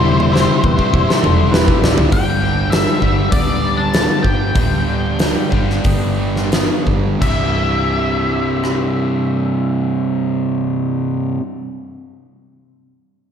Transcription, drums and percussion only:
0.20 high tom medium
0.36 snare medium
0.64 kick medium
0.79 kick medium
0.94 kick medium
1.10 snare medium
1.24 mid tom medium
1.54 snare loud
1.68 kick medium
1.84 snare loud
1.98 floor tom medium
2.12 kick loud
2.12 open hi-hat soft
2.72 snare loud
2.72 open hi-hat soft
3.02 kick medium
3.32 kick loud
3.32 open hi-hat soft
3.94 snare loud
3.94 open hi-hat soft
4.24 kick medium
4.55 kick loud
4.55 open hi-hat soft
5.19 snare medium
5.19 open hi-hat soft
5.52 kick medium
5.70 snare soft
5.84 kick medium
5.84 open hi-hat soft
6.36 snare soft
6.52 snare medium
6.52 open hi-hat soft
6.87 kick medium
7.22 kick medium
7.22 crash medium
8.64 cross-stick medium

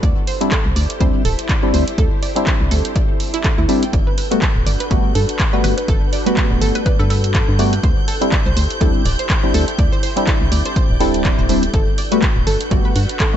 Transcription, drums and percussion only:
0.03 kick loud
0.03 closed hi-hat medium
0.27 open hi-hat loud
0.41 closed hi-hat medium
0.52 kick loud
0.52 clap loud
0.52 closed hi-hat medium
0.76 open hi-hat loud
0.90 closed hi-hat medium
1.01 kick loud
1.01 closed hi-hat medium
1.25 open hi-hat loud
1.39 closed hi-hat medium
1.49 kick loud
1.49 clap loud
1.49 closed hi-hat medium
1.74 open hi-hat loud
1.88 closed hi-hat medium
1.98 kick loud
1.98 closed hi-hat medium
2.23 open hi-hat loud
2.36 closed hi-hat medium
2.47 kick loud
2.47 clap loud
2.47 closed hi-hat medium
2.71 open hi-hat loud
2.85 closed hi-hat medium
2.96 kick loud
2.96 closed hi-hat medium
3.20 open hi-hat loud
3.34 closed hi-hat medium
3.44 kick loud
3.44 clap loud
3.44 closed hi-hat medium
3.69 open hi-hat loud
3.83 closed hi-hat medium
3.93 kick loud
3.93 closed hi-hat medium
4.18 open hi-hat loud
4.32 closed hi-hat medium
4.42 kick loud
4.42 clap loud
4.42 closed hi-hat medium
4.67 open hi-hat loud
4.80 closed hi-hat medium
4.91 kick loud
4.91 closed hi-hat medium
5.15 open hi-hat loud
5.29 closed hi-hat medium
5.39 kick loud
5.39 clap loud
5.39 closed hi-hat medium
5.64 open hi-hat loud
5.78 closed hi-hat medium
5.88 kick loud
5.88 closed hi-hat medium
6.13 open hi-hat loud
6.26 closed hi-hat medium
6.37 kick loud
6.37 clap loud
6.37 closed hi-hat medium
6.62 open hi-hat loud
6.75 closed hi-hat medium
6.86 kick loud
6.86 closed hi-hat medium
7.10 open hi-hat loud
7.24 closed hi-hat medium
7.35 kick loud
7.35 clap loud
7.35 closed hi-hat medium
7.59 open hi-hat loud
7.73 closed hi-hat medium
7.83 kick loud
7.83 closed hi-hat soft
8.08 open hi-hat loud
8.22 closed hi-hat medium
8.32 kick loud
8.32 clap loud
8.32 closed hi-hat medium
8.57 open hi-hat loud
8.70 closed hi-hat medium
8.81 kick loud
8.81 closed hi-hat medium
9.05 open hi-hat loud
9.19 closed hi-hat medium
9.30 kick loud
9.30 clap loud
9.30 closed hi-hat medium
9.54 open hi-hat loud
9.68 closed hi-hat medium
9.79 kick loud
9.79 closed hi-hat soft
10.03 open hi-hat loud
10.17 closed hi-hat medium
10.27 kick loud
10.27 clap loud
10.27 closed hi-hat medium
10.52 open hi-hat loud
10.65 closed hi-hat medium
10.76 kick loud
10.76 closed hi-hat medium
11.01 open hi-hat loud
11.14 closed hi-hat medium
11.25 kick loud
11.25 clap loud
11.25 closed hi-hat medium
11.49 open hi-hat loud
11.63 closed hi-hat medium
11.74 kick loud
11.74 closed hi-hat soft
11.98 open hi-hat loud
12.12 closed hi-hat medium
12.22 kick loud
12.22 clap loud
12.22 closed hi-hat medium
12.47 open hi-hat loud
12.61 closed hi-hat medium
12.71 kick loud
12.71 closed hi-hat medium
12.96 open hi-hat loud
13.09 closed hi-hat medium
13.20 kick loud
13.20 clap loud
13.20 closed hi-hat medium

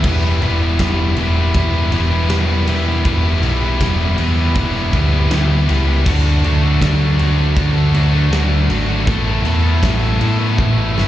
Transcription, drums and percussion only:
0.04 kick loud
0.04 crash loud
0.42 ride medium
0.79 kick medium
0.79 snare loud
0.79 ride loud
1.16 ride medium
1.54 kick loud
1.54 ride loud
1.92 ride medium
2.29 snare loud
2.29 ride loud
2.67 ride medium
3.05 kick loud
3.05 ride loud
3.43 ride medium
3.80 kick medium
3.80 snare loud
3.80 ride loud
4.18 ride medium
4.55 kick loud
4.55 ride loud
4.75 snare soft
4.93 kick medium
4.93 ride medium
5.31 snare loud
5.31 ride loud
5.69 ride medium
6.06 kick loud
6.06 crash loud
6.44 ride medium
6.81 kick loud
6.81 snare loud
6.81 ride loud
7.19 ride medium
7.57 kick loud
7.57 ride loud
7.94 ride medium
8.32 snare loud
8.32 ride loud
8.70 ride medium
9.07 kick loud
9.07 ride loud
9.45 ride medium
9.83 kick medium
9.83 snare loud
9.83 ride loud
10.21 ride medium
10.58 kick loud
10.58 high tom medium
10.98 snare medium

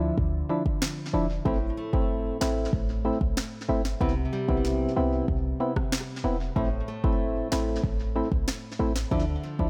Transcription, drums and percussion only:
0.18 kick medium
0.66 kick medium
0.82 finger snap medium
0.82 snare loud
1.46 kick loud
1.93 kick loud
2.41 finger snap medium
2.41 snare loud
2.73 kick medium
3.21 kick loud
3.37 finger snap medium
3.37 snare loud
3.85 snare medium
4.01 kick loud
4.49 kick loud
4.65 snare medium
5.28 kick medium
5.76 kick medium
5.76 cross-stick loud
5.92 finger snap medium
5.92 snare loud
6.56 kick loud
7.04 kick loud
7.52 finger snap medium
7.52 snare loud
7.84 kick medium
8.32 kick loud
8.48 finger snap medium
8.48 snare loud
8.96 snare medium
9.11 kick loud
9.59 kick loud

